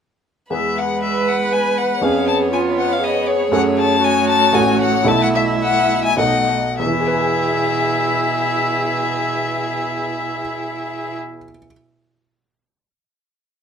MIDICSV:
0, 0, Header, 1, 6, 480
1, 0, Start_track
1, 0, Key_signature, 4, "major"
1, 0, Tempo, 502092
1, 499, Time_signature, 3, 2, 24, 8
1, 3853, Tempo, 530504
1, 5293, Tempo, 596421
1, 11732, End_track
2, 0, Start_track
2, 0, Title_t, "Violin"
2, 0, Program_c, 0, 40
2, 499, Note_on_c, 0, 76, 53
2, 747, Note_on_c, 0, 78, 51
2, 762, Note_off_c, 0, 76, 0
2, 979, Note_off_c, 0, 78, 0
2, 985, Note_on_c, 0, 76, 55
2, 1221, Note_on_c, 0, 78, 57
2, 1236, Note_off_c, 0, 76, 0
2, 1459, Note_on_c, 0, 80, 61
2, 1474, Note_off_c, 0, 78, 0
2, 1702, Note_on_c, 0, 78, 61
2, 1716, Note_off_c, 0, 80, 0
2, 1941, Note_on_c, 0, 77, 68
2, 1955, Note_off_c, 0, 78, 0
2, 2175, Note_off_c, 0, 77, 0
2, 2181, Note_on_c, 0, 81, 65
2, 2257, Note_off_c, 0, 81, 0
2, 2418, Note_on_c, 0, 80, 55
2, 2495, Note_off_c, 0, 80, 0
2, 2660, Note_on_c, 0, 78, 64
2, 2796, Note_on_c, 0, 77, 62
2, 2811, Note_off_c, 0, 78, 0
2, 2904, Note_on_c, 0, 75, 63
2, 2918, Note_off_c, 0, 77, 0
2, 3137, Note_on_c, 0, 73, 62
2, 3152, Note_off_c, 0, 75, 0
2, 3368, Note_off_c, 0, 73, 0
2, 3374, Note_on_c, 0, 78, 73
2, 3450, Note_off_c, 0, 78, 0
2, 3617, Note_on_c, 0, 81, 73
2, 3861, Note_on_c, 0, 80, 85
2, 3875, Note_off_c, 0, 81, 0
2, 4085, Note_off_c, 0, 80, 0
2, 4090, Note_on_c, 0, 81, 85
2, 4318, Note_on_c, 0, 80, 78
2, 4331, Note_off_c, 0, 81, 0
2, 4555, Note_off_c, 0, 80, 0
2, 4561, Note_on_c, 0, 78, 74
2, 4802, Note_on_c, 0, 81, 83
2, 4815, Note_off_c, 0, 78, 0
2, 4922, Note_off_c, 0, 81, 0
2, 4936, Note_on_c, 0, 78, 67
2, 4982, Note_off_c, 0, 78, 0
2, 5048, Note_on_c, 0, 76, 66
2, 5120, Note_off_c, 0, 76, 0
2, 5301, Note_on_c, 0, 78, 80
2, 5633, Note_off_c, 0, 78, 0
2, 5638, Note_on_c, 0, 80, 77
2, 5745, Note_off_c, 0, 80, 0
2, 5750, Note_on_c, 0, 78, 62
2, 6226, Note_off_c, 0, 78, 0
2, 6234, Note_on_c, 0, 76, 61
2, 9739, Note_off_c, 0, 76, 0
2, 11732, End_track
3, 0, Start_track
3, 0, Title_t, "Violin"
3, 0, Program_c, 1, 40
3, 501, Note_on_c, 1, 71, 43
3, 1902, Note_off_c, 1, 71, 0
3, 1934, Note_on_c, 1, 73, 47
3, 4794, Note_on_c, 1, 76, 49
3, 4807, Note_off_c, 1, 73, 0
3, 5742, Note_off_c, 1, 76, 0
3, 5746, Note_on_c, 1, 75, 42
3, 6034, Note_off_c, 1, 75, 0
3, 6231, Note_on_c, 1, 68, 51
3, 9737, Note_off_c, 1, 68, 0
3, 11732, End_track
4, 0, Start_track
4, 0, Title_t, "Viola"
4, 0, Program_c, 2, 41
4, 978, Note_on_c, 2, 71, 54
4, 1899, Note_off_c, 2, 71, 0
4, 1948, Note_on_c, 2, 68, 54
4, 2414, Note_off_c, 2, 68, 0
4, 2422, Note_on_c, 2, 65, 52
4, 2887, Note_off_c, 2, 65, 0
4, 2892, Note_on_c, 2, 68, 53
4, 3832, Note_off_c, 2, 68, 0
4, 3851, Note_on_c, 2, 66, 65
4, 4777, Note_off_c, 2, 66, 0
4, 4792, Note_on_c, 2, 64, 62
4, 5733, Note_off_c, 2, 64, 0
4, 5757, Note_on_c, 2, 63, 43
4, 5991, Note_off_c, 2, 63, 0
4, 6246, Note_on_c, 2, 64, 52
4, 9745, Note_off_c, 2, 64, 0
4, 11732, End_track
5, 0, Start_track
5, 0, Title_t, "Grand piano"
5, 0, Program_c, 3, 0
5, 481, Note_on_c, 3, 40, 38
5, 484, Note_on_c, 3, 59, 32
5, 488, Note_on_c, 3, 68, 31
5, 494, Note_on_c, 3, 71, 36
5, 701, Control_c, 3, 64, 127
5, 1892, Note_off_c, 3, 40, 0
5, 1893, Note_off_c, 3, 59, 0
5, 1895, Note_off_c, 3, 68, 0
5, 1898, Note_off_c, 3, 71, 0
5, 1924, Note_on_c, 3, 41, 44
5, 1930, Note_on_c, 3, 61, 36
5, 1933, Note_on_c, 3, 68, 33
5, 1939, Note_on_c, 3, 71, 36
5, 1956, Control_c, 3, 64, 0
5, 2125, Control_c, 3, 64, 127
5, 3326, Note_off_c, 3, 41, 0
5, 3329, Note_off_c, 3, 61, 0
5, 3331, Note_off_c, 3, 68, 0
5, 3334, Note_off_c, 3, 71, 0
5, 3361, Note_on_c, 3, 42, 51
5, 3362, Note_on_c, 3, 61, 38
5, 3368, Note_on_c, 3, 66, 43
5, 3372, Note_on_c, 3, 69, 40
5, 3390, Control_c, 3, 64, 0
5, 3568, Control_c, 3, 64, 127
5, 4284, Note_off_c, 3, 42, 0
5, 4285, Note_off_c, 3, 61, 0
5, 4288, Note_off_c, 3, 66, 0
5, 4290, Note_off_c, 3, 69, 0
5, 4300, Note_on_c, 3, 33, 51
5, 4301, Note_on_c, 3, 61, 40
5, 4308, Note_on_c, 3, 66, 40
5, 4315, Note_on_c, 3, 69, 39
5, 4336, Control_c, 3, 64, 0
5, 4507, Control_c, 3, 64, 127
5, 4769, Note_off_c, 3, 66, 0
5, 4773, Note_on_c, 3, 35, 50
5, 4774, Note_off_c, 3, 33, 0
5, 4775, Note_off_c, 3, 61, 0
5, 4775, Note_off_c, 3, 69, 0
5, 4779, Note_on_c, 3, 64, 40
5, 4782, Note_on_c, 3, 66, 42
5, 4788, Note_on_c, 3, 69, 39
5, 4815, Control_c, 3, 64, 0
5, 4948, Control_c, 3, 64, 127
5, 5715, Note_off_c, 3, 35, 0
5, 5718, Note_off_c, 3, 64, 0
5, 5719, Note_off_c, 3, 66, 0
5, 5722, Note_off_c, 3, 69, 0
5, 5735, Note_on_c, 3, 35, 44
5, 5738, Note_on_c, 3, 63, 37
5, 5742, Note_on_c, 3, 66, 37
5, 5745, Note_on_c, 3, 69, 39
5, 5771, Control_c, 3, 64, 0
5, 5932, Control_c, 3, 64, 127
5, 6213, Note_off_c, 3, 35, 0
5, 6215, Note_off_c, 3, 63, 0
5, 6217, Note_off_c, 3, 66, 0
5, 6218, Note_off_c, 3, 69, 0
5, 6236, Note_on_c, 3, 40, 45
5, 6254, Control_c, 3, 64, 0
5, 6293, Note_on_c, 3, 52, 43
5, 6347, Note_on_c, 3, 64, 41
5, 6404, Note_on_c, 3, 68, 39
5, 6422, Control_c, 3, 64, 127
5, 6460, Note_on_c, 3, 71, 44
5, 6518, Note_on_c, 3, 80, 40
5, 9146, Control_c, 3, 64, 0
5, 9920, Note_off_c, 3, 40, 0
5, 9977, Note_off_c, 3, 52, 0
5, 10031, Note_off_c, 3, 64, 0
5, 10087, Note_off_c, 3, 68, 0
5, 10144, Note_off_c, 3, 71, 0
5, 10201, Note_off_c, 3, 80, 0
5, 11732, End_track
6, 0, Start_track
6, 0, Title_t, "Cello"
6, 0, Program_c, 4, 42
6, 498, Note_on_c, 4, 56, 45
6, 1901, Note_off_c, 4, 56, 0
6, 1939, Note_on_c, 4, 59, 49
6, 3344, Note_off_c, 4, 59, 0
6, 3373, Note_on_c, 4, 57, 57
6, 6012, Note_off_c, 4, 57, 0
6, 6233, Note_on_c, 4, 47, 58
6, 9738, Note_off_c, 4, 47, 0
6, 11732, End_track
0, 0, End_of_file